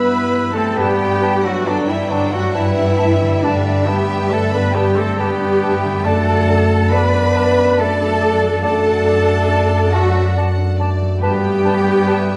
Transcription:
Already playing: G2 G3 B3 E4 B4 B5 E6
0.32 B3
0.53 G3 A3 C4 A4 A5
0.75 G2 G3 B3 G4 B4 G5 A5
1.00 A3
1.22 D4 B4 A5
1.41 F#3 A3 F#4 B4 F#5
1.46 F#4
1.65 D3 F#3 D4 B4 D5 G5 A5
1.87 E3 G3 E4 D5 E5
2.09 D3 F#3 D4 B4 D5 A5 B5
2.30 A3 F#4 D5 F#5
2.35 F#3
2.52 G3 E4 B4 E5 F#5 A5
2.57 E3
2.77 D4
2.98 A3 B4 E5 A5
3.21 D3
3.42 G2 D3 G3 D4 B4 D5 A5
3.66 A3
3.85 G3 B3 D4 G4 B4 G5 A5
4.10 B4
4.28 A3 D4 A4 B4 A5
4.51 B3 D4 B4 D5 B5
4.56 B4
4.72 G3 B3 G4 B4 G5 A5 B5
4.77 G4
4.95 A3 C4 A4 D5 A5
5.17 G3 B3 G4 B4 D5 G5 A5
5.21 G4
5.41 D4
5.62 A3 B4 E5 A5
5.84 D3
6.04 F#2 A3 D4 A4 D5 F#5 A5
6.28 A3
6.49 D4 D5 A5
6.71 A4
6.91 B3 D4 B4 D5 A5 B5
7.14 D5
7.35 D5 E5 A5
7.57 D5
7.77 A3 D4 A4 D5 A5
8.00 D4
8.21 A3 D5 A5
8.43 F#3
8.63 F#2 A3 D4 A4 D5 F#5 A5
8.86 A3
9.06 D4 D5 A5
9.50 D4 D5 A5
9.72 D5
9.92 F#3 A3 F#4 D5 E5 F#5 A5
10.15 D5
10.36 A4 D5 F#5 A5
10.58 D4
10.79 A3 D5 A5
11.01 F#3
11.21 G2 G3 B3 G4 B4 G5 A5
11.44 A3
11.65 D4 B4 A5
11.87 B4
12.07 A4 B4 E5 A5
12.29 D5

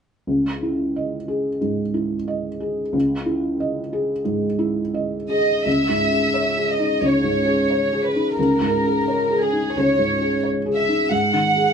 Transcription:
0.27 C#2
0.63 E4
0.96 D#5
1.28 G#4
1.61 G#2
1.94 E4
2.28 D#5
2.60 G#4
2.93 C#2
3.26 E4
3.60 D#5
3.93 G#4
4.25 G#2
4.59 E4
4.94 D#5
5.30 G#4 D#5
5.66 C#2 E5
5.89 G#2
6.12 G#4
6.34 C#5
6.57 G#4
6.69 D#5
6.79 D#4
7.02 C#2 C#5
7.24 G#2
7.46 G#4
7.70 C#5
7.93 G#4
8.02 B4
8.16 D#4
8.36 C#2 A#4
8.61 G#2
8.85 G#4
9.08 C#5
9.30 G#4
9.40 G#4
9.53 D#4
9.75 C#2 C#5
9.99 G#2
10.21 G#4
10.44 C#5
10.66 G#4
10.76 E5
10.89 D#4
11.10 G#2 F#5
11.33 D#3
11.56 G#4

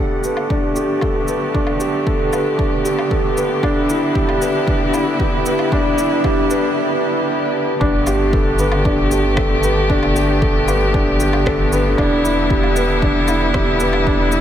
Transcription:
Already playing: D3 A3 B3 D4 G4 A4
0.24 B4, shaker
0.37 low woodblock
0.50 D4, kick
0.76 G4, shaker
1.01 A4, kick, low woodblock
1.28 B4, shaker
1.54 D4, kick
1.67 low woodblock
1.80 G4, shaker
2.06 A4, kick
2.33 B4, low woodblock, shaker
2.59 D4, kick
2.85 G4, shaker
2.99 low woodblock
3.11 A4, kick
3.37 B4, shaker
3.63 D4 E4, kick, low woodblock
3.89 E4, shaker
4.15 G4, kick
4.29 low woodblock
4.41 B4, shaker
4.67 D4, kick
4.93 E4, low woodblock, shaker
5.20 G4, kick
5.46 B4, shaker
5.59 low woodblock
5.72 D4, kick
5.98 E4, shaker
6.24 G4, kick, low woodblock
6.50 B4, shaker
7.80 G1 D3 A3 B3 D4 G4, kick
8.07 G4, low woodblock, shaker
8.33 A4, kick
8.59 B4, shaker
8.72 low woodblock
8.85 D4, kick
9.11 G4, shaker
9.37 A4, kick, cross-stick, low woodblock
9.63 B4, shaker
9.90 D4, kick
10.03 low woodblock
10.16 G4, shaker
10.42 A4, kick
10.68 B4, low woodblock, shaker
10.94 D4, kick
11.20 G4, shaker
11.33 low woodblock
11.46 A4, kick, cross-stick
11.72 B4, shaker
11.98 E1 G3 D4 E4, kick, low woodblock
12.24 E4, shaker
12.50 G4, kick
12.63 low woodblock
12.76 B4, shaker
13.02 D4, kick
13.28 E4, low woodblock, shaker
13.54 G4, kick, cross-stick
13.80 B4, shaker
13.93 low woodblock
14.06 D4, kick
14.32 E4, shaker

